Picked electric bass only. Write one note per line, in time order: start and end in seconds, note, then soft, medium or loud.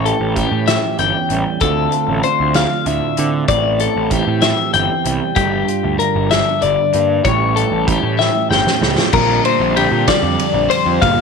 0.00 0.11 A1 medium
0.20 0.45 A1 medium
0.52 0.77 A2 medium
0.99 1.11 G1 medium
1.30 1.43 A1 medium
1.61 1.86 D2 medium
2.08 2.21 A1 medium
2.40 2.65 D2 medium
2.86 2.99 D2 medium
3.18 3.43 D3 medium
3.48 3.86 A1 medium
3.96 4.21 A1 medium
4.27 4.52 A2 medium
4.74 4.87 G1 medium
5.05 5.18 C2 medium
5.36 5.62 G1 medium
5.84 5.97 D2 medium
6.15 6.41 G1 medium
6.63 6.75 G1 medium
6.94 7.19 G2 medium
7.25 7.63 A1 medium
7.71 7.97 A1 medium
8.03 8.28 A2 medium
8.50 8.63 G1 medium
8.81 8.94 C#2 medium
9.13 9.38 A#1 medium
9.60 9.85 A#1 medium
9.91 10.04 A#2 medium
10.23 10.35 F2 medium
10.54 10.67 A#1 medium
10.85 10.98 F2 medium
11.02 11.21 G1 medium